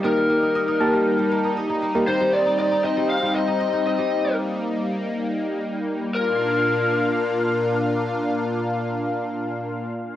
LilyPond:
<<
  \new Staff \with { instrumentName = "Lead electric guitar" } { \time 4/4 \key bes \major \tempo 4 = 118 bes'2. r4 | c''8 d''8 d''8 ees''8 f''8 ees''4 ees''8~ | ees''8 r2. r8 | bes'1~ |
bes'1 | }
  \new Staff \with { instrumentName = "FM electric piano" } { \time 4/4 \key bes \major <bes ees' g' bes'>4~ <bes ees' g' bes'>16 r16 <bes ees' g' a''>4. r8. <bes ees' g' bes'>16 | r1 | r1 | r1 |
r1 | }
  \new Staff \with { instrumentName = "Kora" } { \time 4/4 \key bes \major ees16 g16 bes16 ees'16 ees''16 ees'16 bes16 g16 r16 g16 bes16 ees'16 ees''16 ees'16 bes16 g16 | ees16 g16 c'16 ees'16 ees''16 ees'16 c'16 g16 r16 g16 c'16 ees'16 ees''16 ees'16 c'16 g16 | r1 | r1 |
r1 | }
  \new Staff \with { instrumentName = "Analog synth pad" } { \time 4/4 \key bes \major << { <g bes ees'>1~ | <g bes ees'>1~ | <g bes ees'>1 | <bes, bes d' f' f''>1~ |
<bes, bes d' f' f''>1 | } \\ { r1 | c'1 | bes1 | r1 |
r1 | } >> }
>>